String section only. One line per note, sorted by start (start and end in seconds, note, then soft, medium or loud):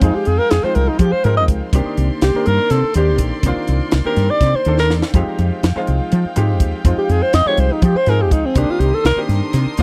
0.00 1.69 G#3 medium
0.00 1.69 F5 medium
0.00 1.69 G5 medium
1.74 5.11 A#3 medium
1.74 5.11 D5 medium
1.74 5.11 C6 medium
5.14 8.52 F5 medium
5.14 8.52 G5 medium
8.55 9.83 D4 medium
8.55 9.83 A#4 medium
8.55 9.83 C6 medium
8.55 9.83 D#6 medium